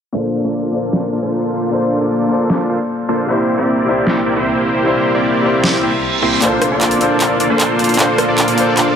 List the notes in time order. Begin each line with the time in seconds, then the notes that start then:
0.13 A#2 A#3 D4 F4 A4 C5
0.44 A#3 D4 F4 A4 D5
0.71 A#2 A#3 D4 A4 C5
0.93 snare
1.12 A#3 D4 F4 A4 D5
1.22 A#3 D4 F4 A4 C5
1.69 A#2 A#3 D4 A4 C5
2.01 A#3 D4 F4 A4 D5
2.28 A#2 A#3 D4 A4
2.32 C5
2.50 snare
2.69 A#3 D4 F4 A4 C5
3.09 A#3 D4 F4 A4 C5
3.26 C2 C3 A#3 C4 D4 E4 G4 A#4 C5
3.30 C5
3.58 A#3 C4 E4 G4 D5
3.85 C3 A#3 D4 E4
3.89 C5
4.07 snare
4.26 A#3 C4 E4 G4 D5
4.36 A#3 C4 E4 G4 C5
4.83 C3 A#3 D4 E4 C5
5.15 A#3 C4 E4 G4 D5
5.42 C3 A#3 D4 E4
5.46 C5
5.64 snare, reverse cymbal
5.83 A#3 C4 E4 G4 C5
6.22 A#3 C4 E4 G4 C5
6.40 A#2 A#3 D4 F4 A4 C5, clap, closed hi-hat, riser
6.44 C5
6.62 cross-stick, closed hi-hat
6.71 A#3 D4 F4 A4 D5
6.81 clap, closed hi-hat
6.91 closed hi-hat
6.99 A#2 A#3 D4 A4, closed hi-hat
7.03 C5
7.20 clap, closed hi-hat
7.40 A#3 D4 F4 A4 D5, closed hi-hat
7.50 A#3 D4 F4 A4 C5
7.60 clap, closed hi-hat
7.79 closed hi-hat
7.84 closed hi-hat
7.89 closed hi-hat
7.94 A#2 A#3, closed hi-hat
7.99 D4 A4 C5, clap, closed hi-hat
8.18 cross-stick, closed hi-hat
8.28 A#3 D4 F4 A4 D5
8.38 clap, closed hi-hat
8.48 closed hi-hat
8.56 A#2 A#3 D4 A4, closed hi-hat
8.60 C5
8.77 clap, closed hi-hat